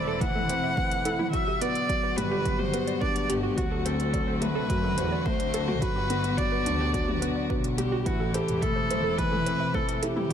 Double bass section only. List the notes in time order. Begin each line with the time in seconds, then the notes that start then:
Already playing: E1
2.17 G1
3.30 G1
3.57 D2
4.70 F#2
4.98 E2
5.26 D2
5.82 G1
6.66 D2
7.50 B1
8.06 A1
8.48 E1
8.90 E1